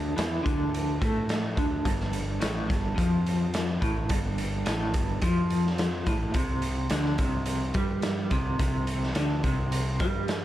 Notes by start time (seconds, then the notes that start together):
Already playing: D2 D3
0.16 E2 E3, snare, closed hi-hat
0.43 D2 D3, kick, closed hi-hat
0.74 closed hi-hat
1.01 A2 A3, kick, closed hi-hat
1.29 snare, closed hi-hat
1.57 D2 D3, kick, closed hi-hat
1.85 G1 G2, kick, closed hi-hat
2.00 snare
2.13 closed hi-hat
2.40 A1 A2, snare, closed hi-hat
2.69 G1 G2, kick, snare, closed hi-hat
2.96 F2 F3, kick, closed hi-hat
3.26 closed hi-hat
3.54 snare, closed hi-hat
3.81 A1 A2, kick, closed hi-hat
4.09 G1 G2, kick, closed hi-hat
4.38 closed hi-hat
4.66 A1 A2, snare, closed hi-hat
4.94 G1 G2, kick, closed hi-hat
5.22 F2 F3, kick, closed hi-hat
5.50 closed hi-hat
5.66 snare
5.78 snare, closed hi-hat
6.06 A1 A2, kick, closed hi-hat
6.34 C2 C3, kick, closed hi-hat
6.62 closed hi-hat
6.90 D2 D3, snare, closed hi-hat
7.05 snare
7.18 C2 C3, kick, closed hi-hat
7.46 closed hi-hat
7.74 G2 G3, kick, closed hi-hat
8.02 snare, closed hi-hat
8.31 C2 C3, kick, closed hi-hat
8.59 C2 C3, kick, closed hi-hat
8.87 closed hi-hat
9.03 snare
9.15 D2 D3, snare, closed hi-hat
9.44 C2 C3, kick, closed hi-hat
9.72 closed hi-hat
10.00 G2 G3, kick, closed hi-hat
10.28 snare, closed hi-hat